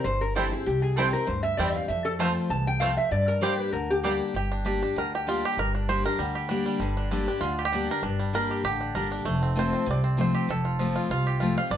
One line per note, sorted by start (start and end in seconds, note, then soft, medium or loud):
0.04 0.51 G1 medium
0.04 0.64 G2 medium
0.04 0.21 C5 loud
0.21 0.35 A#4 medium
0.35 0.52 E3 medium
0.35 0.44 G3 medium
0.35 0.52 G3 medium
0.35 0.45 C4 medium
0.35 0.44 C4 medium
0.35 0.53 C4 medium
0.35 0.46 E4 medium
0.35 0.44 E4 medium
0.35 0.51 E4 loud
0.35 0.52 A4 medium
0.35 0.46 C5 medium
0.35 0.46 G5 medium
0.52 0.67 C4 medium
0.52 0.66 E4 medium
0.52 0.66 G#4 medium
0.66 1.13 C2 medium
0.66 1.25 C3 medium
0.66 0.82 G4 medium
0.82 0.96 G#4 medium
0.96 1.13 E3 medium
0.96 1.14 G3 medium
0.96 1.05 G3 medium
0.96 1.07 C4 loud
0.96 1.14 C4 medium
0.96 1.05 C4 medium
0.96 1.07 E4 loud
0.96 1.12 E4 medium
0.96 1.05 E4 medium
0.96 1.12 A4 medium
0.96 1.07 C5 loud
0.96 1.07 G5 loud
1.13 1.28 C4 soft
1.13 1.27 E4 medium
1.13 1.27 A#4 medium
1.27 1.54 D2 medium
1.27 1.86 G2 medium
1.27 1.42 C5 medium
1.43 1.57 E5 loud
1.57 1.85 E2 medium
1.57 1.75 E3 medium
1.57 1.75 G3 medium
1.57 1.66 G3 medium
1.57 1.68 C4 medium
1.57 1.75 C4 medium
1.57 1.67 C4 medium
1.57 1.68 E4 medium
1.57 1.74 E4 loud
1.57 1.67 E4 medium
1.57 1.69 C5 medium
1.57 1.74 D5 medium
1.57 1.69 G5 loud
1.74 1.90 C4 soft
1.74 1.89 E4 medium
1.74 1.88 F5 loud
1.88 2.35 F2 loud
1.88 2.48 F2 medium
1.88 2.05 E5 medium
2.05 2.14 A4 loud
2.19 2.49 F3 medium
2.19 2.49 A3 loud
2.19 2.27 A3 medium
2.19 2.29 C4 medium
2.19 2.49 C4 medium
2.19 2.28 C4 medium
2.19 2.30 F4 medium
2.19 2.50 F4 loud
2.19 2.28 F4 medium
2.19 2.30 C5 loud
2.19 2.30 A5 loud
2.50 2.96 C2 medium
2.50 2.80 E2 medium
2.50 2.67 A5 medium
2.67 2.81 G5 loud
2.80 3.10 F2 medium
2.80 2.89 A3 medium
2.80 2.90 C4 medium
2.80 2.89 C4 medium
2.80 2.91 F4 loud
2.80 2.89 F4 medium
2.80 2.91 C5 loud
2.80 2.97 F5 medium
2.80 2.91 A5 medium
2.97 3.11 E5 medium
3.11 3.70 G2 medium
3.11 3.58 G2 medium
3.11 3.28 D5 medium
3.28 3.42 A#4 loud
3.41 3.71 G3 medium
3.41 3.50 G3 medium
3.41 3.52 A#3 medium
3.41 3.72 A#3 medium
3.41 3.72 D4 medium
3.41 3.45 D4 medium
3.41 3.52 G4 loud
3.41 3.72 G4 loud
3.41 3.59 C5 medium
3.41 3.52 D5 medium
3.41 3.53 G5 loud
3.59 3.72 B4 medium
3.73 4.19 D2 medium
3.73 4.32 D3 medium
3.73 3.89 A#4 medium
3.90 3.99 G4 loud
4.03 4.33 G3 medium
4.03 4.12 G3 medium
4.03 4.14 A#3 medium
4.03 4.33 A#3 medium
4.03 4.34 D4 medium
4.03 4.07 D4 medium
4.03 4.14 G4 medium
4.03 4.34 G4 loud
4.03 4.14 D5 medium
4.03 4.14 G5 medium
4.34 4.81 G1 medium
4.34 4.93 G2 medium
4.34 4.64 G4 medium
4.52 4.82 D4 medium
4.65 4.81 G3 medium
4.65 4.82 A#3 medium
4.65 4.82 D4 loud
4.65 5.15 G4 medium
4.65 4.81 G4 medium
4.82 5.75 D4 medium
4.82 4.96 D4 soft
4.82 4.96 G4 medium
4.96 5.42 D2 medium
4.96 5.55 D3 medium
4.96 5.14 A#4 medium
5.15 5.28 G4 medium
5.27 5.56 G3 medium
5.27 5.57 A#3 medium
5.27 5.57 D4 medium
5.27 5.43 F4 medium
5.27 5.57 G4 medium
5.45 5.59 G4 medium
5.57 6.04 G1 medium
5.57 6.16 G2 medium
5.57 5.74 A#4 loud
5.75 6.48 D4 medium
5.89 6.04 G3 medium
5.89 6.05 A#3 medium
5.89 6.05 D4 medium
5.89 6.04 G4 loud
5.89 6.05 C5 loud
6.05 6.19 D4 soft
6.05 6.18 G4 medium
6.05 6.34 A#4 medium
6.18 6.65 D2 medium
6.18 6.78 D3 medium
6.18 6.65 G3 medium
6.35 7.44 G4 medium
6.49 6.79 G3 medium
6.49 6.79 A#3 medium
6.49 6.97 D4 medium
6.49 6.80 D4 medium
6.49 6.80 G4 loud
6.66 7.40 G3 medium
6.79 7.26 G1 medium
6.79 7.40 G2 medium
6.79 7.10 D3 medium
6.97 7.27 D4 medium
7.11 7.55 D3 medium
7.11 7.27 G3 medium
7.11 7.27 A#3 loud
7.11 7.28 D4 loud
7.11 7.27 G4 loud
7.28 7.69 D4 medium
7.28 7.42 D4 soft
7.28 7.41 G4 medium
7.41 7.87 D2 medium
7.41 8.01 D3 medium
7.41 7.63 F4 medium
7.59 7.64 G4 medium
7.65 7.87 G4 loud
7.72 7.89 G3 medium
7.72 7.89 A#3 medium
7.72 8.02 D4 medium
7.72 7.89 D4 medium
7.72 7.88 G4 medium
7.89 8.03 D4 soft
7.89 8.02 G4 medium
7.89 8.03 A#4 loud
8.02 8.49 G1 medium
8.02 8.62 G2 medium
8.02 8.47 D4 medium
8.19 8.61 G3 medium
8.33 8.63 G3 medium
8.33 8.63 A#3 medium
8.33 8.63 D4 loud
8.33 8.63 G4 loud
8.33 8.66 A#4 loud
8.51 8.63 G4 medium
8.64 8.90 A1 medium
8.64 9.23 D3 medium
8.64 8.93 G4 medium
8.81 9.10 D4 medium
8.95 9.21 G1 medium
8.95 9.24 G3 medium
8.95 9.24 A#3 medium
8.95 9.25 D4 medium
8.95 9.25 G4 medium
8.95 9.11 A#4 medium
9.12 9.25 D4 medium
9.25 9.71 F1 medium
9.25 9.84 F2 medium
9.25 10.38 A3 medium
9.42 9.72 C4 medium
9.56 9.85 F3 medium
9.56 9.85 A3 medium
9.56 9.86 C4 loud
9.56 9.86 F4 medium
9.56 9.89 C5 medium
9.73 10.03 C4 medium
9.86 10.33 C2 medium
9.86 10.45 C3 medium
9.91 10.20 D5 medium
10.04 10.46 C4 medium
10.17 10.47 F3 medium
10.17 10.47 A3 medium
10.17 10.47 C4 loud
10.17 10.47 F4 medium
10.17 10.51 C5 medium
10.35 10.76 G4 medium
10.48 10.94 F1 medium
10.48 11.07 F2 medium
10.48 11.13 A4 loud
10.65 10.94 F4 medium
10.79 11.23 F3 medium
10.79 11.09 F3 medium
10.79 11.09 A3 medium
10.79 11.09 C4 loud
10.79 11.09 F4 loud
10.96 11.10 F4 medium
11.09 11.56 C2 medium
11.09 11.69 C3 medium
11.09 11.39 F4 medium
11.27 11.68 G4 medium
11.40 11.57 F3 medium
11.40 11.57 A3 medium
11.40 11.57 C4 medium
11.40 11.57 F4 medium
11.40 11.56 F4 loud
11.58 11.72 C4 soft
11.58 11.70 F5 loud
11.71 11.77 G1 loud
11.71 11.77 G2 medium
11.71 11.77 D5 loud